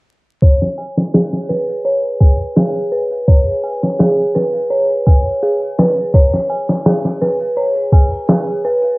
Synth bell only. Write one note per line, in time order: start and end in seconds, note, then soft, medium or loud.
0.42 0.77 C#5 medium
0.78 0.96 G#5 medium
1.14 1.25 G#4 medium
1.49 1.83 B4 medium
1.85 2.19 C#5 medium
2.20 2.39 G#5 medium
2.56 2.67 G#4 medium
2.92 3.26 B4 medium
3.28 3.62 C#5 medium
3.63 3.82 G#5 medium
3.99 4.10 G#4 medium
4.35 4.69 B4 medium
4.70 5.05 C#5 medium
5.06 5.24 G#5 medium
5.42 5.53 G#4 medium
5.78 6.12 B4 medium
6.14 6.48 C#5 medium
6.50 6.67 G#5 medium
6.86 6.96 G#4 medium
7.21 7.55 B4 medium
7.57 7.91 C#5 medium
7.93 8.10 G#5 medium
8.29 8.39 G#4 medium
8.65 8.98 B4 medium